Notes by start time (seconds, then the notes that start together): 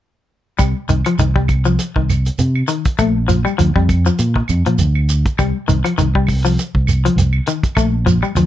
0.59 C2 G3, kick, closed hi-hat, claves, shekere
0.89 C2 D#3, closed hi-hat, shekere
1.05 F3, closed hi-hat, claves, shekere
1.19 C2 D#3, closed hi-hat, shekere
1.36 G3, kick
1.48 kick, closed hi-hat, claves, shekere
1.65 F3, shekere
1.79 closed hi-hat, shekere
1.96 C2 D#3, kick
2.10 closed hi-hat, claves, shekere
2.25 closed hi-hat, shekere
2.39 C3, closed hi-hat, shekere
2.55 claves
2.68 D#3, closed hi-hat, shekere
2.85 kick, closed hi-hat, shekere
2.99 A#1 A3, kick, closed hi-hat, claves, shekere
3.28 F3, closed hi-hat, shekere
3.45 G3, claves, shekere
3.58 D2 F3, closed hi-hat, shekere
3.76 F2 G3, kick
3.89 kick, closed hi-hat, claves, shekere
4.06 F3, shekere
4.19 A#2, closed hi-hat, shekere
4.36 muted clean electric guitar stroke, kick
4.48 F2, closed hi-hat, claves, shekere
4.66 A#2 F3, closed hi-hat, shekere
4.78 D2, closed hi-hat, shekere
4.95 claves
5.09 closed hi-hat, shekere
5.26 kick, closed hi-hat, shekere
5.38 C2 G3, kick, closed hi-hat, claves, shekere
5.68 C2 D#3, closed hi-hat, shekere
5.84 F3, closed hi-hat, claves, shekere
5.98 C2 D#3, closed hi-hat, shekere
6.15 G3, kick
6.27 kick, open hi-hat, claves, shekere
6.45 F3, shekere
6.59 closed hi-hat, shekere
6.75 C2, kick
6.87 closed hi-hat, claves, shekere
7.05 F3, closed hi-hat, shekere
7.16 C2, closed hi-hat, shekere
7.33 claves
7.47 D#3, closed hi-hat, shekere
7.63 kick, closed hi-hat, shekere
7.75 A#1 A3, kick, closed hi-hat, claves, shekere
8.06 F3, kick, closed hi-hat, shekere
8.22 G3, claves, shekere
8.35 D2 F3, closed hi-hat, shekere